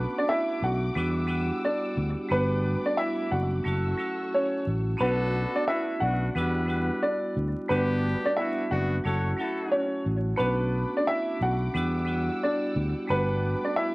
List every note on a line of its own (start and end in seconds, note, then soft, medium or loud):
0.00 0.87 A3 medium
0.00 0.12 B3 medium
0.00 0.88 B3 medium
0.00 0.88 C#4 medium
0.00 0.89 D4 medium
0.00 0.89 F#4 medium
0.00 0.94 A4 medium
0.00 0.12 B4 medium
0.00 3.62 F#5 medium
0.00 0.95 B5 medium
0.00 2.28 D6 loud
0.18 0.29 D4 medium
0.18 0.29 D5 medium
0.29 0.59 E4 medium
0.29 0.59 E5 loud
0.62 0.89 B1 medium
0.62 1.61 F#4 medium
0.62 1.60 F#5 medium
0.95 1.50 E2 loud
0.95 1.26 G3 medium
0.95 3.63 G3 medium
0.95 1.26 B3 medium
0.95 1.27 D4 medium
0.95 1.28 E4 medium
0.95 1.29 F#4 medium
0.95 2.30 E6 loud
1.27 2.24 G3 medium
1.27 2.25 B3 medium
1.27 2.25 D4 medium
1.27 2.26 E4 medium
1.27 2.26 F#4 medium
1.65 1.95 D4 medium
1.65 1.94 D5 medium
1.97 2.14 D2 loud
2.29 2.75 G1 loud
2.29 3.58 G3 medium
2.29 3.58 A3 medium
2.29 3.59 B3 medium
2.29 2.83 B3 medium
2.29 3.59 D4 medium
2.29 3.59 F#4 medium
2.29 2.83 B4 loud
2.29 3.64 B5 medium
2.29 3.65 D6 medium
2.86 2.98 D4 medium
2.86 2.97 D5 medium
2.98 3.29 E4 medium
2.98 3.28 E5 loud
3.31 3.59 F#1 medium
3.31 4.29 F#4 medium
3.31 4.29 F#5 medium
3.64 3.93 F#1 loud
3.64 3.96 F#3 medium
3.64 3.97 A3 medium
3.64 3.98 C#4 medium
3.64 3.98 E4 medium
3.64 3.99 F#4 medium
3.64 4.99 A4 medium
3.64 4.99 F#5 medium
3.64 4.99 C#6 medium
3.64 4.99 E6 medium
3.97 4.94 F#3 medium
3.97 4.95 A3 medium
3.97 4.95 C#4 medium
3.97 4.96 E4 medium
3.97 4.96 F#4 medium
4.34 4.65 C#4 medium
4.34 4.64 C#5 medium
4.67 4.94 A1 medium
4.97 5.44 B1 loud
4.97 6.27 A3 medium
4.97 6.27 B3 medium
4.97 6.28 C#4 medium
4.97 6.28 D4 medium
4.97 6.28 F#4 medium
4.97 5.52 B4 loud
5.01 5.53 B3 medium
5.01 5.64 D4 loud
5.01 5.64 F#4 loud
5.01 5.64 A4 loud
5.56 5.67 D4 medium
5.56 5.67 D5 medium
5.68 5.95 B3 loud
5.68 5.95 D4 medium
5.68 5.99 E4 medium
5.68 5.95 F#4 loud
5.68 5.98 E5 loud
6.00 6.29 B1 loud
6.00 6.30 B3 medium
6.00 6.30 D4 medium
6.00 6.99 F#4 medium
6.00 6.30 F#4 medium
6.00 6.98 F#5 medium
6.35 6.89 E2 loud
6.35 6.62 G3 medium
6.35 6.65 G3 medium
6.35 6.62 B3 loud
6.35 6.66 B3 medium
6.35 6.67 D4 medium
6.35 6.68 E4 medium
6.35 6.69 F#4 medium
6.35 6.62 B4 loud
6.66 7.64 G3 medium
6.66 7.20 G3 medium
6.66 7.64 B3 medium
6.66 7.20 B3 medium
6.66 7.64 D4 medium
6.66 7.65 E4 medium
6.66 7.65 F#4 medium
6.66 7.20 B4 medium
7.03 7.33 D4 medium
7.03 7.33 D5 medium
7.37 7.53 D2 loud
7.68 8.14 G1 loud
7.68 8.97 G3 medium
7.68 8.97 A3 medium
7.68 8.98 B3 medium
7.68 8.22 B3 medium
7.68 8.34 B3 loud
7.68 8.34 D4 loud
7.68 8.98 D4 medium
7.68 8.99 F#4 medium
7.68 8.34 G4 loud
7.68 8.21 B4 medium
8.25 8.37 D4 medium
8.25 8.37 D5 medium
8.36 8.65 B3 loud
8.36 8.65 D4 loud
8.36 8.68 E4 medium
8.36 8.65 F#4 loud
8.36 8.67 E5 loud
8.71 8.98 F#1 medium
8.71 8.99 B3 loud
8.71 8.99 D4 loud
8.71 9.69 F#4 medium
8.71 8.99 F#4 loud
8.71 9.68 F#5 medium
9.04 9.32 F#1 loud
9.04 9.36 F#3 medium
9.04 9.36 A3 medium
9.04 9.37 C#4 medium
9.04 9.38 E4 medium
9.04 9.32 F#4 loud
9.04 9.38 F#4 medium
9.04 9.32 A4 loud
9.04 9.32 C#5 loud
9.37 10.34 F#3 medium
9.37 10.34 A3 medium
9.37 10.35 C#4 medium
9.37 9.91 E4 medium
9.37 10.35 E4 medium
9.37 9.91 F#4 medium
9.37 10.35 F#4 medium
9.37 9.91 A4 loud
9.71 10.03 C#4 medium
9.71 10.02 C#5 medium
10.06 10.33 A1 medium
10.37 10.84 B1 loud
10.37 11.66 A3 medium
10.37 11.67 B3 medium
10.37 10.91 B3 medium
10.37 11.67 C#4 medium
10.37 11.67 D4 medium
10.37 11.68 F#4 medium
10.37 10.90 B4 loud
10.37 13.95 F#5 medium
10.37 11.73 B5 medium
10.37 13.07 D6 loud
10.97 11.08 D4 medium
10.97 11.07 D5 medium
11.08 11.38 E4 medium
11.08 11.38 E5 loud
11.41 11.68 B1 medium
11.41 12.39 F#4 medium
11.41 12.39 F#5 medium
11.74 12.29 E2 loud
11.74 12.04 G3 medium
11.74 13.95 G3 medium
11.74 12.05 B3 medium
11.74 12.06 D4 medium
11.74 12.07 E4 medium
11.74 12.08 F#4 medium
11.74 13.08 E6 loud
12.05 13.03 G3 medium
12.05 13.03 B3 medium
12.05 13.04 D4 medium
12.05 13.04 E4 medium
12.05 13.05 F#4 medium
12.43 12.74 D4 medium
12.43 12.73 D5 medium
12.76 12.93 D2 loud
13.07 13.53 G1 loud
13.07 13.95 G3 medium
13.07 13.95 A3 medium
13.07 13.95 B3 medium
13.07 13.62 B3 medium
13.07 13.95 D4 medium
13.07 13.95 F#4 medium
13.07 13.61 B4 loud
13.07 13.95 B5 medium
13.07 13.95 D6 medium
13.64 13.76 D4 medium
13.64 13.76 D5 medium
13.76 13.95 E4 medium
13.76 13.95 E5 loud